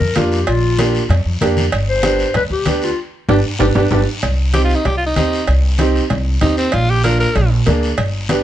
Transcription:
Already playing: clarinet A#4
0.00 upright bass F2, high conga
0.16 upright bass F2, upright piano A#3 D4 F4, clarinet G4, cowbell, high conga, short guiro
0.32 short guiro
0.47 upright bass A#1, clarinet F4, cowbell, high conga, long guiro
0.79 upright piano A#3 D4 G4, cowbell, high conga, short guiro
0.95 short guiro
1.09 upright bass F2, cowbell, high conga, low conga, long guiro
1.25 upright bass F2
1.41 upright bass F2, upright piano A#3 D4 G4, cowbell, high conga, short guiro
1.57 high conga, short guiro
1.72 upright bass G1, cowbell, high conga, long guiro
1.89 clarinet C5
2.03 upright piano B3 D4 G4, cowbell, high conga, short guiro
2.19 short guiro
2.34 upright bass D2, clarinet B4, cowbell, high conga, low conga, long guiro
2.50 upright bass D2, clarinet G4
2.65 upright bass D2, upright piano B3 D4 G4, cowbell, high conga, short guiro
2.82 clarinet F4, short guiro
3.29 upright bass G1, upright piano B3 D4 G4, clarinet G4, low conga, high timbale, long guiro
3.59 upright bass G1, upright piano B3 D4 G4, clarinet G4, low conga, high timbale, long guiro
3.75 upright bass G1, upright piano B3 D4 G4, clarinet G4, low conga, high timbale, long guiro
3.91 upright bass G1, upright piano B3 D4 G4, clarinet G4, low conga, high timbale, long guiro
4.23 upright bass C2, cowbell, high conga, low conga, long guiro
4.54 upright piano C4 D#4 G4, alto saxophone G4, cowbell, high conga, short guiro
4.64 alto saxophone F4
4.70 short guiro
4.75 alto saxophone D#4
4.85 upright bass C2, alto saxophone G4, cowbell, high conga, low conga, long guiro
4.97 alto saxophone F4
5.06 alto saxophone D#4
5.16 upright bass D#2, upright piano C4 D#4 G4, alto saxophone D#4, cowbell, high conga, short guiro
5.33 short guiro
5.47 upright bass C2, cowbell, high conga, long guiro
5.79 upright piano C4 D#4 G4, cowbell, high conga, short guiro
5.95 short guiro
6.10 upright bass C2, cowbell, high conga, low conga, long guiro
6.41 upright bass D#2, upright piano C4 D#4 G4, alto saxophone D#4, cowbell, high conga, low conga, short guiro
6.57 alto saxophone C4, short guiro
6.72 upright bass A#1, alto saxophone F4, cowbell, high conga, long guiro
6.90 alto saxophone G4
7.04 upright piano A#3 D4 F4, alto saxophone A#4, cowbell, high conga, short guiro
7.20 alto saxophone A#4, short guiro
7.36 upright bass A#1, cowbell, high conga, low conga, long guiro
7.66 upright bass D2, upright piano A#3 D4 G#4, cowbell, high conga, low conga, short guiro
7.83 short guiro
7.98 upright bass G1, cowbell, high conga, low conga, long guiro
8.29 upright piano B3 D4 G4, cowbell, high conga, short guiro

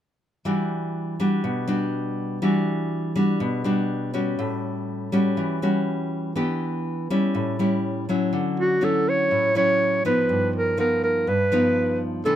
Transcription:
0.45 nylon-string guitar E3 G3 D4 F#4
1.20 nylon-string guitar G3 D4 F#4
1.44 nylon-string guitar B2
1.68 nylon-string guitar G3 D4 F#4
2.42 nylon-string guitar E3 G3 D4 F#4
3.16 nylon-string guitar G3 D4 F#4
3.40 nylon-string guitar B2
3.64 nylon-string guitar G3 D4 F#4
4.14 nylon-string guitar G3 C#4 F#4
4.39 nylon-string guitar A2
5.12 nylon-string guitar G3 C#4 F#4
5.37 nylon-string guitar E3
5.62 nylon-string guitar G3 C#4 F#4
6.36 nylon-string guitar E3 B3 D4 G4
7.10 nylon-string guitar G3 C#4 E4
7.35 nylon-string guitar A2
7.59 nylon-string guitar G3 C#4 E4
8.09 nylon-string guitar F#3 C#4 E4
8.33 nylon-string guitar D3
8.60 clarinet F#4
8.81 nylon-string guitar F#3 C#4 E4, clarinet A4
9.09 clarinet C#5
9.31 nylon-string guitar A2
9.55 nylon-string guitar F#3 C#4 E4, clarinet C#5
10.05 nylon-string guitar F3 B3 D#4, clarinet B4
10.29 nylon-string guitar G2
10.56 clarinet A#4
10.77 nylon-string guitar F3 B3 D#4, clarinet A#4
11.04 clarinet A#4
11.27 nylon-string guitar G2, clarinet B4
11.52 nylon-string guitar F3 B3 D#4
12.25 nylon-string guitar C3 E3 A3 D4, clarinet A4

